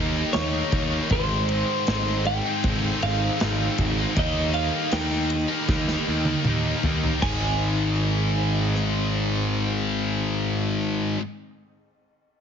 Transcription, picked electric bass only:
0.00 0.22 D#2 medium
0.36 0.61 D#2 medium
0.72 0.98 D#2 medium
1.11 1.62 G#1 loud
1.88 2.39 G#1 medium
2.64 2.90 G#1 loud
3.03 3.28 G#1 medium
3.42 3.67 G#1 medium
3.79 4.04 G#1 medium
4.17 4.68 D#2 loud
4.92 5.44 D#2 medium
5.68 5.95 D#2 medium
6.08 6.34 D#2 medium
6.48 6.73 D#2 medium
6.85 7.10 D#2 medium
7.23 11.15 G#1 loud

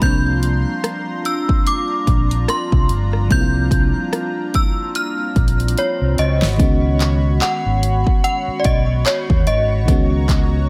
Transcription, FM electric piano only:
0.00 3.25 F3 medium
0.00 3.26 G3 medium
0.00 3.27 A#3 medium
0.00 3.27 C4 medium
0.05 3.28 D4 medium
3.28 6.13 F3 medium
3.28 6.14 G3 medium
3.28 6.15 A#3 medium
3.33 6.15 C4 medium
3.33 3.40 E4 medium
3.41 6.19 F4 medium
6.57 9.83 D#3 medium
6.57 9.83 G#3 medium
6.57 9.84 B3 medium
6.61 9.85 C#4 medium
6.61 9.86 F#4 medium
9.85 10.69 D#3 medium
9.85 10.69 G#3 medium
9.85 10.69 B3 medium
9.90 10.69 C#4 medium
9.90 10.69 F#4 medium

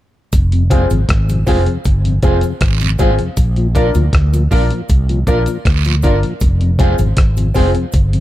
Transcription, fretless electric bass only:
0.33 0.87 F1 medium
0.91 1.08 G#1 medium
1.09 1.45 G#1 medium
1.48 1.66 F1 medium
1.86 2.21 G1 medium
2.23 2.41 F1 medium
2.61 2.97 G#1 medium
3.00 3.18 G#1 medium
3.37 3.91 A#1 medium
3.95 4.12 D2 medium
4.13 4.49 D2 medium
4.52 4.70 A#1 medium
4.90 5.25 C2 loud
5.27 5.46 A#1 medium
5.66 6.01 D2 medium
6.04 6.22 G1 medium
6.42 6.95 F1 loud
6.99 7.16 G#1 loud
7.17 7.53 G#1 medium
7.56 7.74 F1 medium
7.94 8.20 G1 medium

